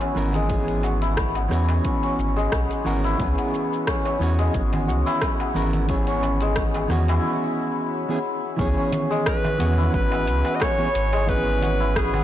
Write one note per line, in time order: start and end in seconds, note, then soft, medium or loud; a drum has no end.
0.00 0.12 E3 loud
0.00 0.34 G#3 medium
0.00 0.12 B3 medium
0.00 1.36 B3 medium
0.00 0.13 C#4 medium
0.00 1.85 C#4 medium
0.00 1.01 E4 loud
0.00 0.14 F#4 loud
0.00 0.83 F#4 medium
0.00 1.17 B4 medium
0.00 closed hi-hat soft
0.00 darbuka tek medium
0.15 1.47 G#1 medium
0.15 0.45 E3 medium
0.15 0.46 B3 medium
0.15 0.46 C#4 medium
0.15 0.47 A#4 loud
0.15 shaker medium
0.33 2.35 G#3 medium
0.33 closed hi-hat soft
0.33 darbuka dum medium
0.33 shaker soft
0.47 1.46 E3 medium
0.47 1.47 B3 medium
0.47 1.48 C#4 medium
0.47 1.48 G#4 medium
0.47 kick medium
0.47 closed hi-hat medium
0.47 shaker soft
0.68 closed hi-hat soft
0.68 shaker soft
0.83 2.85 F#4 medium
0.83 darbuka tek medium
0.83 shaker medium
1.02 3.04 E4 medium
1.02 closed hi-hat soft
1.02 shaker soft
1.17 3.19 B4 medium
1.17 kick loud
1.17 cross-stick loud
1.17 closed hi-hat medium
1.17 shaker soft
1.35 3.38 B3 medium
1.35 closed hi-hat soft
1.35 darbuka ka medium
1.35 shaker soft
1.48 1.80 E2 medium
1.48 2.81 E3 medium
1.48 2.81 B3 medium
1.48 2.82 C#4 medium
1.48 2.83 F#4 loud
1.48 cross-stick soft
1.48 shaker medium
1.68 closed hi-hat soft
1.68 darbuka tek medium
1.68 shaker soft
1.85 2.03 C#4 medium
1.85 kick loud
1.85 closed hi-hat medium
1.85 shaker soft
2.03 3.87 C#4 medium
2.03 closed hi-hat soft
2.19 2.48 G#1 medium
2.19 shaker medium
2.36 4.37 G#3 loud
2.36 shaker soft
2.52 2.68 B1 medium
2.52 kick medium
2.52 cross-stick loud
2.52 closed hi-hat medium
2.52 shaker soft
2.70 closed hi-hat soft
2.70 darbuka ka soft
2.70 shaker soft
2.84 3.15 G#1 medium
2.84 3.15 E3 medium
2.84 3.15 B3 medium
2.84 3.16 C#4 medium
2.84 4.87 F#4 medium
2.84 3.16 A#4 loud
2.84 shaker medium
3.04 5.06 E4 loud
3.04 closed hi-hat soft
3.04 shaker soft
3.17 3.35 C#2 loud
3.17 4.16 E3 medium
3.17 4.17 B3 medium
3.17 4.17 C#4 medium
3.17 4.18 G#4 loud
3.17 5.22 B4 medium
3.17 kick medium
3.17 closed hi-hat medium
3.17 shaker soft
3.38 5.40 B3 medium
3.38 closed hi-hat soft
3.54 shaker medium
3.73 shaker soft
3.87 4.05 C#4 medium
3.87 kick medium
3.87 cross-stick loud
3.87 closed hi-hat medium
3.87 shaker soft
4.05 5.89 C#4 medium
4.05 closed hi-hat soft
4.05 darbuka ka medium
4.05 shaker soft
4.19 4.49 E2 medium
4.19 5.51 E3 loud
4.19 5.52 B3 loud
4.19 5.52 C#4 medium
4.19 5.53 F#4 loud
4.19 shaker medium
4.39 6.40 G#3 loud
4.39 closed hi-hat soft
4.39 shaker soft
4.54 4.89 G#1 medium
4.54 kick loud
4.54 closed hi-hat medium
4.54 shaker soft
4.73 closed hi-hat soft
4.73 darbuka tek medium
4.73 darbuka dum medium
4.88 5.03 C#2 medium
4.88 6.90 F#4 medium
4.88 shaker medium
5.06 7.08 E4 loud
5.06 darbuka tek medium
5.06 shaker soft
5.22 7.95 B4 medium
5.22 kick loud
5.22 cross-stick medium
5.22 closed hi-hat medium
5.22 darbuka ka medium
5.22 shaker soft
5.40 9.54 B3 medium
5.40 closed hi-hat soft
5.40 darbuka tek medium
5.54 6.86 G#1 medium
5.54 5.85 E3 loud
5.54 5.85 B3 medium
5.54 5.86 C#4 medium
5.54 5.86 A#4 loud
5.54 shaker medium
5.73 closed hi-hat soft
5.73 darbuka dum medium
5.73 shaker soft
5.87 6.86 E3 medium
5.87 6.86 B3 medium
5.87 6.07 C#4 medium
5.87 6.87 C#4 medium
5.87 kick medium
5.87 closed hi-hat medium
5.87 shaker soft
5.91 6.88 G#4 medium
6.07 8.58 C#4 medium
6.07 closed hi-hat soft
6.07 shaker soft
6.23 darbuka tek medium
6.23 shaker medium
6.41 8.64 G#3 loud
6.41 closed hi-hat soft
6.41 shaker soft
6.56 kick loud
6.56 cross-stick loud
6.56 closed hi-hat medium
6.56 shaker soft
6.74 closed hi-hat soft
6.74 darbuka ka medium
6.74 darbuka tek medium
6.74 shaker soft
6.88 7.19 E2 medium
6.88 8.05 E3 loud
6.88 8.06 B3 medium
6.88 8.06 C#4 medium
6.88 9.59 F#4 medium
6.88 cross-stick soft
6.88 darbuka dum medium
6.88 shaker medium
6.92 8.07 F#4 loud
7.08 9.77 E4 loud
7.08 closed hi-hat soft
7.08 darbuka tek medium
7.08 shaker soft
8.09 8.17 E3 medium
8.09 8.17 B3 medium
8.09 8.18 C#4 medium
8.09 8.18 G#4 loud
8.56 8.75 C#2 loud
8.56 9.55 E3 medium
8.56 9.56 B3 medium
8.56 8.77 C#4 medium
8.56 9.56 C#4 medium
8.56 9.57 G#4 loud
8.56 kick loud
8.56 shaker soft
8.77 10.60 C#4 medium
8.92 closed hi-hat medium
8.92 darbuka dum medium
8.92 shaker medium
9.11 11.12 G#3 medium
9.11 shaker soft
9.26 9.90 B4 loud
9.26 kick loud
9.26 cross-stick loud
9.26 shaker soft
9.44 darbuka ka medium
9.44 darbuka tek medium
9.44 darbuka dum medium
9.44 shaker soft
9.58 9.89 E2 loud
9.58 10.75 E3 loud
9.58 10.75 B3 loud
9.58 10.76 C#4 medium
9.58 11.62 F#4 medium
9.58 10.77 F#4 loud
9.58 closed hi-hat medium
9.58 shaker medium
9.78 11.80 E4 loud
9.78 darbuka dum medium
9.78 shaker soft
9.93 10.29 G#1 medium
9.93 11.96 B4 medium
9.93 10.57 B4 loud
9.93 kick loud
9.93 shaker soft
10.12 12.14 B3 medium
10.12 darbuka tek medium
10.12 shaker soft
10.27 10.43 C#2 medium
10.27 closed hi-hat medium
10.27 shaker medium
10.45 darbuka tek medium
10.45 shaker soft
10.55 10.63 D#5 medium
10.60 10.78 C#4 medium
10.60 11.30 C#5 loud
10.60 kick loud
10.60 cross-stick loud
10.60 darbuka ka medium
10.60 shaker soft
10.78 10.87 E3 medium
10.78 10.87 B3 medium
10.78 12.24 C#4 medium
10.78 10.87 C#4 medium
10.78 10.88 G#4 loud
10.95 12.24 G#1 loud
10.95 closed hi-hat medium
10.95 shaker medium
11.13 12.24 G#3 medium
11.13 darbuka tek medium
11.13 shaker soft
11.26 12.24 E3 medium
11.26 12.24 B3 medium
11.26 12.24 C#4 medium
11.26 11.98 B4 loud
11.26 kick loud
11.26 shaker soft
11.30 12.24 G#4 loud
11.62 12.24 F#4 medium
11.62 closed hi-hat medium
11.62 darbuka dum medium
11.62 shaker medium
11.80 12.24 E4 loud
11.80 shaker soft
11.96 12.24 G#4 loud
11.96 12.24 B4 medium
11.96 kick loud
11.96 cross-stick loud
11.96 shaker soft
12.14 12.24 B3 medium
12.14 darbuka ka medium
12.14 darbuka tek medium
12.14 darbuka dum medium
12.14 shaker soft